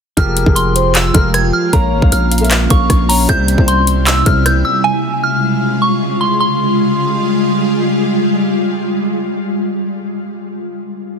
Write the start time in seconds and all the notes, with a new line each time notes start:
0.17 F1 F3 G#3 F4 G4 G#4 A#4 G5 F6, kick, closed hi-hat
0.37 closed hi-hat
0.46 F1 F3 F4 G4 G#4, kick
0.56 C6, closed hi-hat
0.75 C5, closed hi-hat
0.95 E6, clap, closed hi-hat
1.14 F1 F3 F4 G4 A#4 F6, kick, closed hi-hat
1.34 G#6, cross-stick, closed hi-hat
1.53 F6
1.73 A#1 A#3 C#4 F4 A#4 C#5 F5 A#5, kick, closed hi-hat
1.93 G#1
2.02 A#1 A#3 A#4 C#5 F5, kick
2.12 A#1 F6, closed hi-hat
2.32 F5, closed hi-hat
2.38 A#3 A#4 C#5, closed hi-hat
2.42 E5, closed hi-hat
2.51 clap, closed hi-hat
2.69 A#1 A#3 A#4 C#5 F5 C#6, kick, closed hi-hat
2.90 A#1, kick, cross-stick, closed hi-hat
3.09 C#5 A#5, open hi-hat
3.28 C2 C3 G3 E4 C5 G6, kick, closed hi-hat
3.48 closed hi-hat
3.57 C2 C3 G3 E4 C5, kick
3.68 C6, closed hi-hat
3.87 closed hi-hat
4.07 E6, clap, closed hi-hat
4.25 C2 C3 G3 E4 C5 F6, kick, closed hi-hat
4.46 G6, cross-stick, closed hi-hat
4.65 E6
4.84 C#3 G#3 F4 G#5
5.24 F6
5.82 C#6
6.21 C6
6.41 G3 G#3 F4 C6